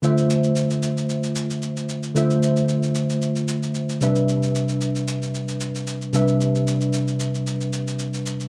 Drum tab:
SH |xxxxxxxxxxxxxxxx|xxxxxxxxxxxxxxxx|xxxxxxxxxxxxxxxx|xxxxxxxxxxxxxxxx|